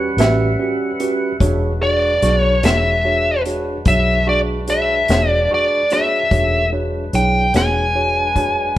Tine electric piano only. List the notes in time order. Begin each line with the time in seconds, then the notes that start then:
0.18 C#4 F#4 G4 B4
0.59 C#4 F#4 G4 B4
1.00 C#4 F#4 G4 B4
1.41 D4 F#4 G#4 C#5
1.81 D4 F#4 G#4 C#6
2.23 D4 F#4 G#4 C#6
2.63 D4 F#4 G#4 C#5
3.05 D4 F#4 G#4 C#5
3.46 D4 F#4 G#4 C#5
3.87 D4 F#4 G#4 C#5
4.27 D4 F#4 G#4 C#6
4.68 D4 F#4 G#4 C#5
5.09 D4 F#4 G#4 C#5
5.51 D4 F#4 G#4 C#6
5.92 D4 F#4 G#4 C#5
6.31 D4 F#4 G#4 C#5
6.72 D4 F#4 G#4 C#5
7.14 D4 E4 G#4 C#5
7.54 D4 F#4 G#4 C#5
7.95 D4 F#4 G#4 C#5
8.36 D4 F#4 G#4 C#5